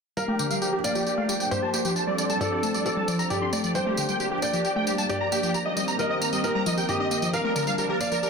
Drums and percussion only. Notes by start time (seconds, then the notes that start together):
0.17 tambourine
0.39 tambourine
0.51 tambourine
0.62 tambourine
0.84 tambourine
0.95 tambourine
1.07 tambourine
1.29 tambourine
1.40 tambourine
1.51 tambourine
1.74 tambourine
1.85 tambourine
1.96 tambourine
2.18 tambourine
2.30 tambourine
2.41 tambourine
2.63 tambourine
2.74 tambourine
2.86 tambourine
3.08 tambourine
3.19 tambourine
3.30 tambourine
3.53 tambourine
3.64 tambourine
3.75 tambourine
3.97 tambourine
4.09 tambourine
4.20 tambourine
4.42 tambourine
4.53 tambourine
4.65 tambourine
4.87 tambourine
4.98 tambourine
5.09 tambourine
5.32 tambourine
5.43 tambourine
5.54 tambourine
5.77 tambourine
5.88 tambourine
5.99 tambourine
6.21 tambourine
6.33 tambourine
6.44 tambourine
6.66 tambourine
6.77 tambourine
6.89 tambourine
7.11 tambourine
7.22 tambourine
7.33 tambourine
7.56 tambourine
7.67 tambourine
7.78 tambourine
8.01 tambourine
8.12 tambourine
8.23 tambourine